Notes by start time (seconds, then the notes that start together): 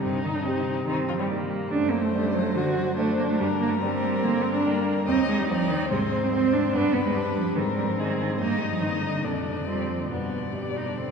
0.02 G2 C3 C4 D#4
0.24 D#3 D#4
0.34 D3 D4
0.44 C3 G3 C4 D#4 G4
0.87 D#3 C4 D#4
1.09 F3 F4
1.18 G3
1.30 G3 A#3 D#4 G4
1.70 F#2 A3 D4 C5
1.91 A#3
2.02 A3
2.12 G3 A3 D4 C5
2.35 F#3
2.55 D3 F#3 F#4
2.76 F#3
2.97 A3 D4 C5
3.18 A#3
3.29 A3
3.39 G2 G3 A#4
3.61 A#3
3.71 A3
3.81 G3 C4 D4 A#4
4.23 D3 A#3
4.44 C4
4.54 D4
4.66 G3 A#3 D4 A#4
5.07 D#2 C4 D#4 D#5
5.28 G#3
5.39 G3
5.49 F3 C4 C5 D5
5.71 D#3
5.90 G#2 C3 C4 C5
6.11 G#3
6.23 C4
6.33 C4 C5
6.53 D4
6.72 G2 B3 D4 B4
6.93 B3
7.04 G#3
7.15 G3 D4 G4 B4
7.36 F3
7.56 G#2 D#3 C4 A#4
7.77 G3
7.88 F3
7.99 D#3 D#4 G#4 D#5
8.20 D#3
8.40 G2 A#3 D#4 D#5
8.60 G3
8.70 F3
8.81 D#3 D#4 D#5
9.02 D3
9.24 F2 A#2 D4 D5
9.44 C3
9.57 D3
9.67 G3 C4 F4 D5
9.89 F3
9.99 D3
10.09 G2 B2 B3 D5
10.53 G3 D4 G4 D5
10.76 D#4
10.87 D4
10.97 D3 C4